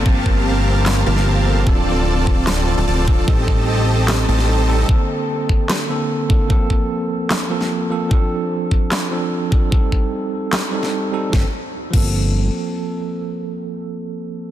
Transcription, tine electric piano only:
X:1
M:4/4
L:1/8
Q:1/4=149
K:Gm
V:1 name="Tine electric piano"
[F,B,Ca]4- [F,B,Ca] [F,B,Ca]2 [F,B,CA] | [F,CDA]4- [F,CDA] [F,CDA]2 [F,CDA] | [G,CEA]4- [G,CEA] z [G,CEA] [G,CEA] | [D,B,C]4- [D,B,C] [D,B,CA]2 [D,B,CA] |
[F,B,CA]4- [F,B,CA] [F,B,CA]2 [F,B,CA] | [F,CDA]4- [F,CDA] [F,CDA]2 [F,CDA] | [G,CEA]4- [G,CEA] [G,CEA]2 [G,CEA] | [F,B,CA] z2 [F,B,CA]4- [F,B,CA]- |
[F,B,CA]8 |]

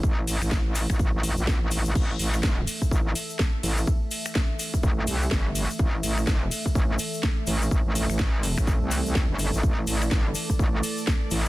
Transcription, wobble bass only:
X:1
M:4/4
L:1/16
Q:"Swing 16ths" 1/4=125
K:Cmix
V:1 name="Wobble bass" clef=bass
A,,,3 A,,,4 A,,,2 A,,,2 B,,,2 A,,,3 | A,,,2 A,,,4 z2 A,,,2 z4 A,,,2 | z8 A,,,2 C,,2 G,,,3 z | A,,,2 A,,,4 z2 A,,,2 z4 A,,,2 |
A,,, A,,,2 A,,,4 A,,,2 C,,4 G,,,2 A,,, | A,,,2 A,,,4 z2 A,,,2 z4 A,,,2 |]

